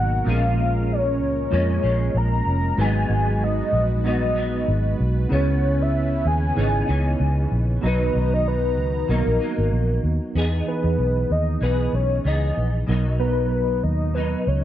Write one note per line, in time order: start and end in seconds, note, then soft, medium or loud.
0.00 0.20 G#1 medium
0.00 0.23 B2 medium
0.00 0.23 D#3 medium
0.00 0.26 F#3 soft
0.00 0.27 F#3 medium
0.00 0.26 A#3 medium
0.00 0.27 A#3 medium
0.00 0.26 B3 medium
0.00 0.26 D#4 medium
0.00 0.27 D#4 medium
0.00 0.28 A#4 medium
0.00 2.74 A#4 medium
0.00 0.30 F#5 loud
0.25 1.21 A#1 loud
0.25 1.50 A#2 medium
0.25 1.50 F3 medium
0.25 1.10 G#3 medium
0.25 5.27 G#3 medium
0.25 1.52 G#3 medium
0.25 1.10 A#3 medium
0.25 0.33 B3 medium
0.25 2.76 C#4 medium
0.25 1.10 F4 medium
0.25 1.11 A#4 medium
0.25 0.93 F5 loud
0.29 1.52 C#4 medium
0.29 1.13 C#4 medium
0.92 1.53 C#5 loud
1.21 1.46 C#2 medium
1.50 1.78 F2 loud
1.50 1.83 A#2 medium
1.50 1.83 F3 medium
1.50 2.35 G#3 medium
1.50 1.83 G#3 medium
1.50 2.36 A#3 medium
1.50 2.36 C#4 medium
1.50 1.82 C#4 medium
1.50 2.36 F4 medium
1.50 2.36 A#4 medium
1.50 2.19 C#5 medium
1.83 2.09 A#1 medium
1.83 2.78 F3 soft
1.83 2.79 G#3 medium
1.83 2.78 C#4 medium
2.14 2.40 A#1 medium
2.14 2.82 A#5 loud
2.46 2.72 F1 medium
2.76 3.03 G#1 loud
2.76 4.03 G#2 medium
2.76 4.04 F#3 medium
2.76 3.61 G#3 medium
2.76 3.62 B3 medium
2.76 4.05 B3 medium
2.76 3.62 D#4 medium
2.76 5.28 F#4 medium
2.76 3.63 F#4 medium
2.76 7.79 B4 medium
2.76 3.63 B4 medium
2.81 4.06 D#4 medium
2.81 3.45 G#5 loud
3.09 3.60 G#1 loud
3.44 4.06 D#5 loud
3.73 4.63 A#1 medium
4.04 4.36 G#2 medium
4.04 4.36 F#3 medium
4.04 4.88 G#3 medium
4.04 4.88 B3 medium
4.04 4.36 B3 medium
4.04 4.89 D#4 medium
4.04 4.34 D#4 medium
4.04 4.89 F#4 medium
4.04 4.89 B4 medium
4.08 4.97 D#5 medium
4.35 5.32 F#3 soft
4.35 5.32 B3 soft
4.35 5.32 D#4 medium
4.68 4.93 G#1 loud
5.00 5.25 B1 medium
5.29 6.22 C#2 loud
5.29 6.55 C#3 medium
5.29 7.81 C#3 medium
5.29 6.14 B3 medium
5.29 6.58 B3 medium
5.29 6.14 C#4 medium
5.29 7.81 C#4 medium
5.29 6.15 E4 medium
5.29 6.15 G#4 medium
5.29 6.15 C#5 medium
5.34 5.84 C#5 medium
5.82 6.28 E5 loud
6.25 6.51 D#2 loud
6.25 7.52 G#5 loud
6.55 6.82 G#1 loud
6.55 6.88 C#3 medium
6.55 6.88 E3 medium
6.55 7.40 B3 medium
6.55 6.88 B3 medium
6.55 7.40 D#4 medium
6.55 6.87 D#4 medium
6.55 7.41 E4 medium
6.55 7.41 G#4 medium
6.55 7.41 C#5 medium
6.88 7.14 C#2 medium
6.88 7.83 E3 soft
6.88 9.10 B3 medium
6.88 7.85 D#4 medium
7.20 7.45 C#2 loud
7.52 7.77 A#1 medium
7.81 8.09 B1 loud
7.81 9.07 B2 medium
7.81 10.33 D#3 medium
7.81 9.08 F#3 medium
7.81 8.66 B3 medium
7.81 8.67 D#4 medium
7.81 10.33 D#4 medium
7.81 8.67 F#4 medium
7.81 8.68 D#5 medium
7.81 10.33 A#5 medium
7.81 8.67 A#5 medium
7.86 9.10 D#4 medium
7.86 8.35 B4 medium
8.15 8.77 B1 loud
8.34 8.49 D#5 loud
8.48 9.10 B4 loud
8.77 9.03 C#2 medium
9.08 9.23 B1 loud
9.08 9.40 B2 medium
9.08 9.41 F#3 medium
9.08 9.40 A#3 medium
9.08 9.93 B3 medium
9.08 9.93 D#4 medium
9.08 9.39 D#4 medium
9.08 9.94 F#4 medium
9.08 9.94 A#4 medium
9.08 10.01 A#4 medium
9.08 9.94 D#5 medium
9.26 9.38 A#1 medium
9.40 10.37 F#3 soft
9.40 10.35 A#3 soft
9.40 10.37 D#4 soft
9.58 9.70 G#1 medium
9.72 9.98 A#1 loud
10.04 10.18 D#2 medium
10.35 10.61 E2 medium
10.35 10.57 E3 medium
10.35 10.57 B3 medium
10.35 11.62 B3 medium
10.35 10.58 D#4 medium
10.35 11.62 D#4 medium
10.35 10.58 G#4 medium
10.35 11.63 G#4 loud
10.66 11.51 E3 medium
10.66 11.51 B3 medium
10.66 11.52 D#4 medium
10.66 11.52 G#4 medium
10.66 11.33 B4 medium
10.84 10.96 E2 medium
10.98 11.24 B1 medium
11.30 11.56 D#2 medium
11.30 11.62 D#5 loud
11.61 11.87 B1 medium
11.61 12.23 E3 medium
11.61 12.25 B3 medium
11.61 12.26 D#4 medium
11.61 12.26 G#4 medium
11.61 11.96 B4 medium
11.93 12.19 B1 medium
11.93 12.28 C#5 medium
12.24 12.50 C#2 medium
12.24 12.88 E3 medium
12.24 14.64 B3 medium
12.24 12.91 D#4 medium
12.24 12.89 G#4 medium
12.24 12.75 D#5 medium
12.57 12.82 A#1 medium
12.87 13.79 B1 loud
12.87 14.13 B2 medium
12.87 13.10 F#3 medium
12.87 14.14 F#3 medium
12.87 13.10 B3 medium
12.87 13.11 D#4 medium
12.87 13.11 A#4 medium
12.91 14.17 D#4 medium
13.19 14.04 F#3 medium
13.19 14.04 B3 medium
13.19 14.05 D#4 medium
13.19 13.85 B4 medium
13.19 14.05 A#5 medium
13.83 14.34 D#2 medium
13.83 14.16 D#5 loud
14.14 14.64 B2 medium
14.14 14.64 F#3 medium
14.14 14.64 D#4 medium
14.14 14.49 B4 medium
14.47 14.64 C#2 medium
14.47 14.64 C#5 medium